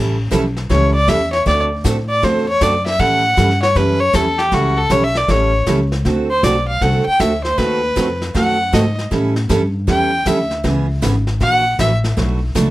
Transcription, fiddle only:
0.71 0.93 C#5 medium
0.95 1.10 D5 medium
1.09 1.32 E5 medium
1.33 1.45 C#5 medium
1.47 1.62 D5 medium
2.09 2.26 D5 medium
2.24 2.48 C5 medium
2.49 2.64 C#5 medium
2.63 2.86 D5 medium
2.87 3.02 E5 loud
3.00 3.62 F#5 loud
3.63 3.78 C#5 medium
3.76 4.02 B4 medium
4.00 4.16 C#5 loud
4.15 4.40 A4 medium
4.38 4.55 G4 medium
4.53 4.79 F#4 medium
4.78 4.93 A4 loud
4.92 5.05 C#5 medium
5.04 5.19 E5 loud
5.17 5.32 D5 medium
5.31 5.68 C#5 medium
6.30 6.45 C5 loud
6.44 6.68 D5 medium
6.68 6.84 F5 medium
6.82 7.05 F#5 medium
7.06 7.21 G5 loud
7.20 7.43 E5 medium
7.44 7.59 C5 medium
7.58 8.21 B4 medium
8.35 8.75 F#5 medium
8.74 8.98 D#5 medium
9.89 10.29 G5 loud
10.27 10.51 E5 medium
11.42 11.77 F#5 loud
11.80 11.95 E5 medium

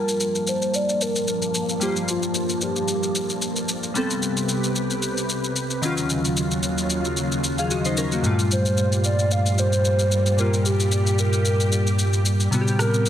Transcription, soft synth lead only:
0.00 0.50 A#4 loud
0.49 0.77 C5 loud
0.75 1.03 D5 loud
1.02 1.82 A#4 loud
1.83 1.94 G4 loud
2.09 2.34 F4 medium
2.36 2.60 F4 medium
2.63 3.65 G4 medium
8.52 9.01 C5 loud
9.06 9.30 D5 medium
9.32 9.60 F5 loud
9.59 10.41 C5 loud
10.39 10.65 A#4 loud
10.66 10.91 G4 medium
10.93 11.21 G4 medium
11.20 12.26 A#4 medium
12.81 13.09 A#4 loud

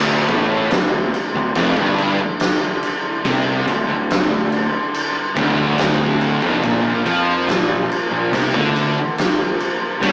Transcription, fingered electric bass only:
0.00 0.26 D1 medium
0.29 0.68 A1 medium
0.70 1.10 D1 medium
1.34 1.54 D1 medium
1.55 1.75 F1 loud
1.77 2.16 G1 loud
3.25 3.64 C2 loud
3.68 3.86 D1 medium
3.87 4.27 D1 medium
4.30 4.70 D1 medium
5.36 6.39 D1 medium
6.43 6.62 F1 loud
6.63 7.03 A#1 loud
7.06 7.45 F2 medium
7.49 7.88 A#1 medium
8.11 8.31 A#1 medium
8.33 8.53 C2 loud
8.54 8.94 D2 loud
10.03 10.12 G2 medium

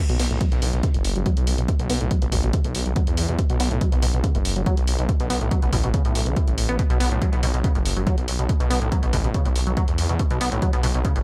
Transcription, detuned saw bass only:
0.09 0.18 B1 medium
0.19 0.29 B1 loud
0.31 0.39 B1 medium
0.52 0.60 B1 medium
0.62 0.71 B1 loud
0.73 0.82 B1 medium
0.94 1.03 F#1 medium
1.05 1.14 F#1 loud
1.16 1.24 F#1 medium
1.37 1.46 B1 medium
1.47 1.56 B1 loud
1.58 1.67 B1 medium
1.79 1.88 B1 medium
1.90 1.99 B1 loud
2.01 2.09 B1 medium
2.22 2.31 A1 medium
2.32 2.42 A1 loud
2.43 2.52 A1 medium
2.65 2.73 B1 medium
2.75 2.84 B1 loud
2.86 2.95 B1 medium
3.07 3.16 E2 medium
3.18 3.27 E2 loud
3.29 3.37 E2 medium
3.50 3.58 B1 medium
3.60 3.69 B1 loud
3.71 3.80 B1 medium
3.92 4.01 B1 medium
4.02 4.12 B1 medium
4.14 4.22 B1 medium
4.35 4.43 F#1 medium
4.45 4.54 F#1 medium
4.56 4.65 F#1 medium
4.77 4.86 B1 medium
4.88 4.97 B1 loud
4.99 5.07 B1 medium
5.20 5.28 B1 medium
5.30 5.39 B1 loud
5.41 5.50 B1 medium
5.63 5.71 A1 medium
5.73 5.82 A1 loud
5.84 5.92 A1 medium
6.05 6.14 B1 medium
6.15 6.25 B1 loud
6.26 6.35 B1 medium
6.48 6.56 A1 medium
6.58 6.67 A1 loud
6.69 6.77 A1 medium
6.90 6.99 B1 medium
7.00 7.10 B1 loud
7.11 7.20 B1 medium
7.33 7.41 B1 medium
7.43 7.52 B1 loud
7.54 7.62 B1 medium
7.75 7.84 F#1 medium
7.85 7.95 F#1 loud
7.96 8.05 F#1 medium
8.18 8.26 B1 medium
8.28 8.37 B1 loud
8.39 8.48 B1 medium
8.60 8.69 B1 medium
8.71 8.80 B1 loud
8.82 8.90 B1 medium
9.03 9.11 A1 medium
9.13 9.22 A1 loud
9.24 9.33 A1 medium
9.45 9.54 B1 medium
9.56 9.65 B1 medium
9.67 9.75 B1 medium
9.88 9.96 E2 medium
9.98 10.07 E2 loud
10.09 10.18 E2 medium
10.30 10.39 B1 medium
10.41 10.50 B1 loud
10.52 10.60 B1 medium
10.73 10.82 B1 medium
10.83 10.93 B1 loud
10.94 11.03 B1 medium
11.16 11.23 F#1 medium

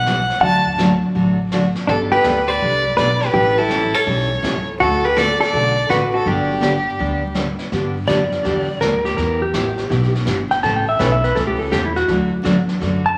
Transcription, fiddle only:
0.00 0.41 F#5 medium
0.42 0.76 A5 loud
1.89 2.00 A4 loud
2.12 2.49 B4 loud
2.48 2.97 D5 loud
2.98 3.22 D5 medium
3.21 3.33 B4 loud
3.33 3.59 B4 loud
3.58 3.97 A4 loud
3.95 4.68 C#5 loud
4.80 5.06 A4 loud
5.05 5.19 B4 medium
5.18 5.41 D5 loud
5.42 5.91 D5 loud
5.89 6.13 B4 medium
6.14 6.29 A4 loud
6.27 7.36 G4 medium

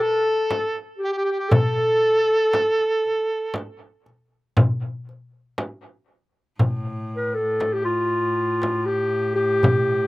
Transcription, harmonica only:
0.02 0.75 A4 medium
1.04 1.10 G4 medium
1.12 1.17 G4 medium
1.17 1.24 G4 medium
1.25 1.31 G4 soft
1.32 1.38 G4 soft
1.39 1.55 G4 medium
1.53 3.55 A4 medium

